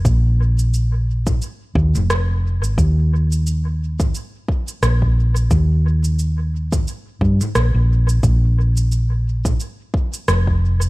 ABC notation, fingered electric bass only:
X:1
M:4/4
L:1/16
Q:"Swing 16ths" 1/4=88
K:Eb
V:1 name="Fingered electric bass" clef=bass
B,,,8 z2 E,, F,,,4 A,,, | E,,8 z4 B,,,4 | E,,8 z2 G,, z B,,, B,,,3 | B,,,8 z4 F,,,4 |]